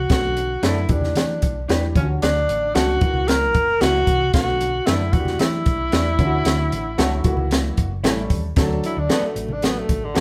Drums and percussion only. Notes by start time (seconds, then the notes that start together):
0.09 kick, snare, closed hi-hat, muted conga
0.37 closed hi-hat, muted conga
0.63 snare, closed hi-hat, high conga
0.89 kick, closed hi-hat
1.01 snare, low conga
1.15 snare, closed hi-hat, muted conga
1.42 kick, closed hi-hat, muted conga, low conga
1.69 snare, closed hi-hat, high conga
1.96 kick, closed hi-hat, high conga
2.22 snare, closed hi-hat, muted conga
2.49 closed hi-hat, muted conga
2.75 snare, closed hi-hat, high conga
3.01 kick, closed hi-hat
3.14 low conga
3.28 snare, closed hi-hat, muted conga
3.54 kick, closed hi-hat, muted conga
3.81 snare, closed hi-hat, high conga
4.07 kick, closed hi-hat, high conga
4.33 kick, snare, closed hi-hat, muted conga
4.61 closed hi-hat, muted conga
4.87 snare, closed hi-hat, high conga
5.13 kick, closed hi-hat
5.25 snare, low conga
5.39 snare, closed hi-hat, muted conga
5.66 kick, closed hi-hat, low conga
5.92 snare, closed hi-hat, high conga
6.19 kick, closed hi-hat, high conga
6.45 snare, closed hi-hat, muted conga
6.72 closed hi-hat, muted conga
6.98 snare, closed hi-hat, high conga
7.24 kick, closed hi-hat
7.37 low conga
7.51 snare, closed hi-hat, muted conga
7.77 kick, closed hi-hat, muted conga
8.04 snare, closed hi-hat, high conga
8.30 kick, closed hi-hat, high conga
8.56 kick, snare, closed hi-hat, muted conga
8.84 closed hi-hat, muted conga
9.10 snare, closed hi-hat, high conga
9.36 closed hi-hat
9.48 low conga
9.62 snare, closed hi-hat, muted conga
9.89 kick, closed hi-hat, muted conga, low conga
10.15 snare, closed hi-hat, high conga